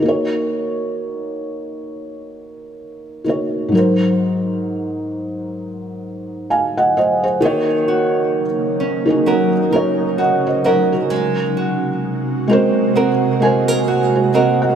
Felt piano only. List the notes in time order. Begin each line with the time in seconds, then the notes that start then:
0.00 D#3 A#3
0.05 F#4 C#5
3.24 D#3 A#3 F#4
3.29 C#5
3.68 G#2 F#3
3.75 A#4 C5
6.50 F5 G#5
6.77 D#5 F#5
6.97 C5 D#5
7.23 G#4 C5
7.41 D#3 A#3 F#4
7.45 C#5
9.06 D#3 A#3 F#4
9.10 G#4
9.71 D#3 A#3 F#4
9.76 C#5
10.19 D#5 F#5
10.47 C5 D#5
10.66 A#4 C#5
10.92 F#4 A#4
12.48 G#3 F#4 A#4
12.53 C5
13.40 G#3 F#4 A#4 G#5
13.45 C5
13.88 F#5
14.15 G#4 C5
14.34 C5 D#5
14.62 D#5 F#5